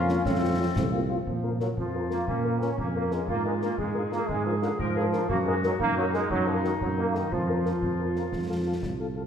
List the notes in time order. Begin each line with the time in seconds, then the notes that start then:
Already playing: F2 A#3 C#4 F4 A#4 F5
0.09 A#3 C#4 F4, snare
0.25 F2 A3 C4 C#4 A4, concert bass drum, snare
0.42 A3 C4 F4
0.59 A3 C4 C#4 F4
0.76 C2 C4, concert bass drum, snare
0.92 A3 A#3 C4 F4
1.10 A3 C4 F4
1.26 A#2 F3, concert bass drum
1.44 C#4 F4 A#4 F5
1.60 F#3 C#4 F4 A#4 F5, snare
1.77 F2 F3 F4, concert bass drum
1.94 C#4 F4 A#4 F5
2.10 A#3 C#4 F4 A#4 F5, snare
2.27 A#2 A#3 C#4, concert bass drum
2.44 C#4 F4 A#4 F5
2.61 C#4 F4 A#4 F5, snare
2.77 F2 A#3 C#4, concert bass drum
2.95 A#3 C#4 F4 A#4 F5
3.11 G#3 C#4 F4 A#4 F5, snare
3.28 G#2 A#3 F4, concert bass drum
3.45 G#3 D4 F4 A#4 F5
3.61 A#3 D4 F4 A#4 F5, snare
3.78 G#2 G#3 G#4, concert bass drum
3.94 D4 F4 A#4 F5
4.11 A#3 D4 F4 A#4 F5, snare
4.29 G#2 G#3, concert bass drum
4.45 F3 D4 F4 A#4 F5
4.62 D3 D4 F4 A#4 F5, snare
4.79 G#2 F3 A#4, concert bass drum
4.95 D4 F4 G#4 A#4 F5
5.11 D4 F4 A#4 F5, snare
5.29 F#2 A#3 F#4, concert bass drum
5.46 G#3 D#4 F#4 A#4 D#5
5.62 F#3 D#4 F#4 A#4 D#5, snare
5.80 F#2 A#3 D#4, concert bass drum
5.97 F#3 D#4 F#4 A#4 D#5
6.13 G#3 D#4 F#4 A#4 D#5, snare
6.30 F#2 F#3 D#4, concert bass drum
6.47 F3 D#4 F#4 A#4 D#5
6.63 D#3 D#4 F#4 A#4 D#5, snare
6.81 F#2 F#3, concert bass drum
6.96 A#3 D#4 F#4 A#4 D#5
7.13 D#3 D#4 F#4 A#4 D#5, snare
7.31 F2 F3 F4, concert bass drum
7.47 C#4 F4 A#4 F5
7.64 C#4 F4 A#4 F5, snare
7.82 F2, concert bass drum
7.98 C#4 F4 A#4 F5
8.15 C#4 F4 A#4 F5, snare
8.32 F2, concert bass drum, snare
8.49 C4 F4 A4 F5
8.66 C4 F4 A4 F5
8.82 C2, concert bass drum, snare
8.99 C4 F4 A4 F5
9.16 C4 F4 A4 F5